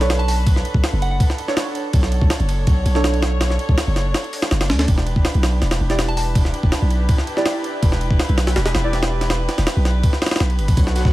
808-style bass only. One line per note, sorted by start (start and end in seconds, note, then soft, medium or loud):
0.00 0.64 B1 medium
0.74 0.82 B1 medium
0.93 1.19 F#1 loud
1.94 2.20 B1 loud
2.22 2.30 B1 medium
2.40 2.66 F#1 loud
2.67 2.84 B1 medium
2.86 3.58 B1 medium
3.69 3.77 B1 medium
3.87 4.13 F#1 loud
4.52 4.72 F#1 loud
4.70 4.87 D2 medium
4.88 5.15 E1 loud
5.16 5.24 E1 medium
5.35 5.61 B1 loud
5.62 5.79 E1 medium
5.80 6.53 E1 medium
6.63 6.71 E1 medium
6.82 7.08 B1 loud
7.83 8.09 E1 loud
8.11 8.19 E1 medium
8.29 8.55 B1 loud
8.57 8.73 E1 medium
8.75 9.47 E1 medium
9.58 9.66 E1 medium
9.77 10.02 B1 loud
10.40 10.60 B1 loud
10.59 10.70 G1 medium
10.68 10.76 A1 medium
10.77 11.04 B1 loud
11.05 11.13 B1 medium